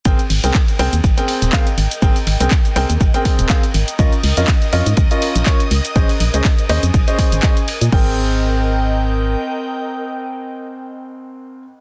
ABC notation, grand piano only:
X:1
M:4/4
L:1/16
Q:"Swing 16ths" 1/4=122
K:Ab
V:1 name="Grand piano"
[CABg] z2 [CABg] z2 [CABg] z2 [CABg]3 [CABf] z3 | [CABg] z2 [CABg] z2 [CABg] z2 [CABg]3 [CABf] z3 | [DFBe] z2 [DFBe] z2 [DFBe] z2 [DFBe]3 [DFBd] z3 | [DAce] z2 [DAce] z2 [DAce] z2 [DAce]3 [DAce] z3 |
[CABg]16- | [CABg]16 |]